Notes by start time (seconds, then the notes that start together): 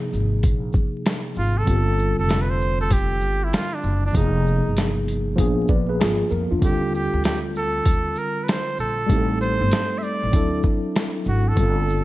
Already playing: C3 F3 A#3 D#4 G#4
0.13 G#1, shaker
0.43 A#1, kick, closed hi-hat
0.73 kick, shaker
1.06 snare, closed hi-hat
1.35 G#1 F4, shaker
1.58 A4
1.65 G1 D3 G3 C4 F4, kick, closed hi-hat
1.70 G4
1.76 A4
1.99 shaker
2.19 F1 A4
2.29 snare, closed hi-hat
2.41 B4
2.50 C5
2.61 shaker
2.81 A4
2.91 G4, kick, closed hi-hat
3.21 G1, shaker
3.44 E4
3.53 F4, snare, closed hi-hat
3.75 D4
3.83 F#1, shaker
4.06 D4
4.12 F1 C3 F3 A#3 D#4, kick, closed hi-hat
4.17 D#4 G#4
4.47 shaker
4.66 G1
4.77 snare, closed hi-hat
5.08 closed hi-hat, shaker
5.36 A#1 F3 A#3 B3 D4, kick, closed hi-hat
5.40 G#4
5.68 A#1 B4 D5, kick, shaker
5.89 G#4 B4
6.00 G#1 F4 G#4, snare, closed hi-hat
6.31 F2 A#4, shaker
6.51 E2 D4 F4
6.59 D#2 D3 G3 C4 F4, kick, closed hi-hat
6.64 G4 A4
6.94 G4, shaker
7.13 D2
7.24 G4, snare, closed hi-hat
7.55 A4, shaker
7.86 D#2, kick, closed hi-hat
8.16 A#4, shaker
8.44 B4
8.48 C5, snare, closed hi-hat
8.78 A#1 A4, shaker
9.07 A1 G3 A3 C4 D#4, kick, closed hi-hat
9.11 G4
9.18 A4
9.41 C5, shaker
9.61 G1
9.71 snare, closed hi-hat
9.98 E5
10.03 D5, shaker
10.23 A1
10.31 D2 F#3 C4 D4 E4, kick, closed hi-hat
10.36 A4
10.63 kick, shaker
10.96 snare, closed hi-hat
11.25 G#1 F#4, shaker
11.48 A4
11.55 G1 D3 G3 C4 F4, kick, closed hi-hat
11.60 A4
11.89 shaker